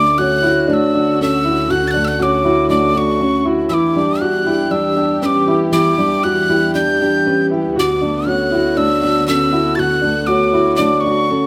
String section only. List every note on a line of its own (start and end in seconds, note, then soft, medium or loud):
0.00 3.68 D2 medium
0.00 3.68 D3 soft
0.00 3.68 C#4 medium
0.00 3.68 F#4 medium
3.70 7.71 E2 medium
3.70 7.71 E3 medium
3.70 5.71 D4 medium
3.70 7.71 G4 medium
5.73 11.47 B3 medium
7.75 11.47 D2 medium
7.75 11.47 D3 soft
7.75 11.47 F#4 medium